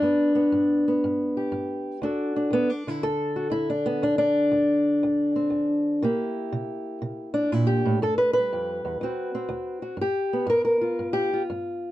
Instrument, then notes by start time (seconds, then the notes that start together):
steel-string acoustic guitar
Already playing: D4
0.02 G2 B3
0.35 B3
0.52 G2
0.88 B3
1.04 G2
1.37 G4
1.52 G2
2.02 D2 D4 F#4 A4
2.36 D4
2.50 D2 B3
2.70 D4
2.87 D3 E4
3.03 D2 A4
3.36 F#4
3.50 D2 E4
3.70 D4
3.86 B3
4.02 D2 D4
4.18 D4
4.52 D2
5.03 D2
5.36 C4
5.50 D2
6.02 C3 A#3 E4 G4
6.52 C3
7.02 C3
7.34 D4
7.52 A#2 E4
7.67 G4
7.85 A2
8.02 G2 A4
8.18 B4
8.33 B4
8.38 G3
8.53 F2
8.85 E2
9.01 D2 C4 F#4
9.35 C4
9.49 D2
9.82 F#4
9.97 G2
10.01 G4
10.33 B3
10.46 G2 A#4
10.65 A#4
10.81 F4
10.99 G2
11.13 G4
11.33 F4
11.50 G2